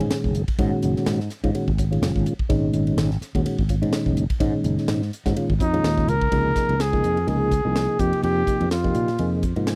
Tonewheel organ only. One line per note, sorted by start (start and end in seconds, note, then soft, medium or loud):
0.00 0.42 A#2 medium
0.00 0.42 D#3 medium
0.00 0.42 G#3 medium
0.00 0.42 C#4 medium
0.00 0.42 G#4 medium
0.59 1.20 A#2 medium
0.59 1.20 D#3 medium
0.59 1.20 G#3 medium
0.59 1.20 C#4 medium
0.59 1.20 F#4 loud
1.44 1.51 A#2 medium
1.44 1.51 D#3 medium
1.44 1.51 G#3 medium
1.44 1.51 C#4 medium
1.44 1.51 F4 medium
1.55 1.72 A#2 medium
1.55 1.72 D#3 medium
1.55 1.72 G#3 medium
1.55 1.72 C#4 medium
1.55 1.72 F#4 medium
1.79 1.85 C#4 soft
1.79 1.85 F#4 soft
1.91 2.34 A#2 medium
1.91 2.33 D#3 medium
1.91 2.34 G#3 medium
1.91 2.33 C#4 medium
1.91 2.34 F4 medium
2.49 3.11 A#2 medium
2.49 3.11 D#3 medium
2.49 3.11 G#3 medium
2.49 3.11 C#4 medium
2.49 3.11 D#4 loud
3.35 3.42 A#2 medium
3.35 3.42 D#3 medium
3.35 3.42 G#3 medium
3.35 3.42 C#4 medium
3.35 3.42 F#4 medium
3.45 3.63 A#2 medium
3.45 3.63 D#3 medium
3.45 3.63 G#3 medium
3.45 3.63 C#4 medium
3.45 3.63 F#4 medium
3.70 3.76 C#4 soft
3.70 3.76 F4 soft
3.82 4.24 A#2 medium
3.82 4.24 D#3 medium
3.82 4.24 G#3 medium
3.82 4.24 C#4 medium
3.82 4.24 D#4 medium
4.40 5.01 A#2 medium
4.40 5.02 D#3 medium
4.40 5.02 G#3 medium
4.40 5.02 C#4 medium
4.40 5.02 D#4 loud
5.26 5.33 A#2 medium
5.26 5.33 D#3 medium
5.26 5.33 G#3 medium
5.26 5.33 C#4 medium
5.26 5.33 F#4 medium
5.36 5.54 A#2 medium
5.36 5.54 D#3 medium
5.36 5.54 G#3 medium
5.36 5.54 C#4 medium
5.36 5.54 F4 medium
5.61 5.67 C#4 soft
5.61 5.67 F#4 soft
5.73 6.16 A#2 medium
5.73 6.16 D#3 medium
5.73 6.16 G#3 medium
5.73 6.16 C#4 medium
5.73 6.16 F4 medium
6.32 6.76 C3 medium
6.32 6.75 F3 medium
6.32 6.76 A#3 medium
6.32 6.76 D#4 medium
6.32 6.75 G#4 medium
6.93 7.18 C3 medium
6.93 7.18 F3 medium
6.93 7.19 A#3 medium
6.93 7.19 D#4 medium
6.93 7.18 G#4 medium
7.27 7.53 C3 medium
7.27 7.53 F3 medium
7.27 7.53 A#3 medium
7.27 7.53 D#4 medium
7.27 7.53 G#4 medium
7.64 7.98 C3 medium
7.64 7.98 F3 medium
7.64 7.98 A#3 medium
7.64 7.98 D#4 medium
7.64 7.98 G#4 medium
7.99 8.67 C3 medium
7.99 8.67 F3 medium
7.99 8.67 A#3 medium
7.99 8.67 D#4 medium
7.99 8.67 G4 medium
8.84 9.10 C3 medium
8.84 9.10 F3 medium
8.84 9.10 A#3 medium
8.84 9.10 D#4 medium
8.84 9.10 G4 medium
9.19 9.45 C3 medium
9.19 9.45 F3 medium
9.19 9.45 A#3 medium
9.19 9.45 D#4 medium
9.19 9.45 G#4 medium
9.56 9.75 C3 medium
9.56 9.75 F3 medium
9.56 9.75 A#3 medium
9.56 9.75 D#4 medium
9.56 9.75 F4 medium
9.67 9.75 G#5 medium